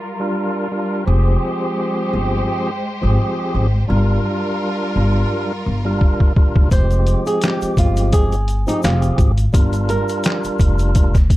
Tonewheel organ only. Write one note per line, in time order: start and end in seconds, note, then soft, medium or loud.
0.20 0.68 G3 medium
0.20 0.68 D4 medium
0.20 0.68 F4 medium
0.20 0.68 A#4 loud
0.71 1.04 G3 medium
0.71 1.04 D4 medium
0.71 1.05 F4 medium
0.71 1.05 A#4 medium
1.06 2.70 F3 loud
1.06 2.70 C4 medium
1.06 2.71 G4 medium
1.06 2.71 G#4 loud
3.01 3.67 F3 medium
3.01 3.67 C4 medium
3.01 3.67 G4 medium
3.01 3.67 G#4 loud
3.88 5.52 G3 medium
3.88 5.52 D4 medium
3.88 5.52 F4 medium
3.88 5.53 A#4 loud
5.85 6.32 G3 medium
5.85 6.33 D4 medium
5.85 6.33 F4 medium
5.85 6.33 A#4 loud
6.37 6.69 G3 medium
6.37 6.69 D4 medium
6.37 6.70 F4 medium
6.37 6.70 A#4 medium
6.71 8.35 F3 loud
6.71 8.36 G#3 loud
6.71 8.35 C4 medium
6.71 8.35 G4 medium
8.67 9.31 F3 medium
8.67 9.32 C4 medium
8.67 9.32 G4 medium
8.67 9.32 G#4 loud
9.53 11.17 G3 medium
9.53 11.17 D4 medium
9.53 11.17 F4 medium
9.53 11.18 A#4 loud